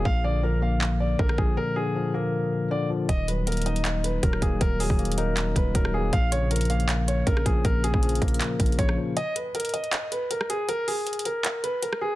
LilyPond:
<<
  \new Staff \with { instrumentName = "Grand piano" } { \time 4/4 \key bes \phrygian \tempo 4 = 158 f''8 d''8 bes'8 f''4 d''8 bes'8 aes'8 | bes'8 aes'4 bes'4. d''8 r8 | ees''8 ces''8 bes'8 ees''4 ces''8 bes'8 aes'8 | bes'8 aes'4 bes'4 ces''8 bes'8 aes'8 |
f''8 des''8 bes'8 f''4 des''8 bes'8 aes'8 | bes'8 aes'4 bes'4. des''8 r8 | ees''8 ces''8 bes'8 ees''4 ces''8 bes'8 aes'8 | bes'8 aes'4 bes'4 ces''8 bes'8 aes'8 | }
  \new Staff \with { instrumentName = "Tine electric piano" } { \clef bass \time 4/4 \key bes \phrygian bes,8 d8 f8 bes4. d8 f8 | bes,8 d8 f8 bes4. d8 f8 | ees8 ges8 bes8 ees'4. ges8 bes8 | ees8 ges8 bes8 ees'4. ges8 bes8 |
bes,8 des8 f8 bes4. des8 f8 | bes,8 des8 f8 bes4. des8 f8 | r1 | r1 | }
  \new Staff \with { instrumentName = "808-style bass" } { \clef bass \time 4/4 \key bes \phrygian bes,,2. bes,,8 bes,,8 | r1 | ees,,2. ees,,8 ees,,8 | ees,,8. ees,,4.~ ees,,16 ees,,8 ees,,4 |
bes,,2. bes,,8 bes,,8 | bes,,8. bes,,8. bes,,8 r8 bes,,8 bes,,8 r8 | r1 | r1 | }
  \new DrumStaff \with { instrumentName = "Drums" } \drummode { \time 4/4 bd4 r4 hc4 bd16 ss16 bd8 | r4 r4 r4 r4 | <hh bd>8 hh8 hh32 hh32 hh32 hh32 hh16 hh16 <hc hh>8 hh8 <hh bd>16 ss16 <hh bd>8 | <hh bd>8 hho16 bd16 \tuplet 3/2 { hh16 hh16 hh16 hh16 r16 r16 } <hc hh>8 <hh bd>8 <hh bd>16 ss8. |
<hh bd>8 hh8 hh32 hh32 hh32 hh32 hh16 hh16 <hc hh>8 hh8 <hh bd>16 ss16 <hh bd>8 | <hh bd>8 hh16 bd16 \tuplet 3/2 { hh16 hh16 hh16 <hh bd>16 hh16 hh16 <hc hh>16 r16 r16 <hh bd>16 hh16 hh16 } <hh bd>16 ss8. | hh8 hh8 hh32 hh32 hh32 hh32 hh16 hh16 <hc hh>8 hh8 hh16 ss16 hh8 | hh8 hho8 \tuplet 3/2 { hh16 hh16 hh16 hh16 r16 r16 } <hc hh>8 hh8 hh16 ss8. | }
>>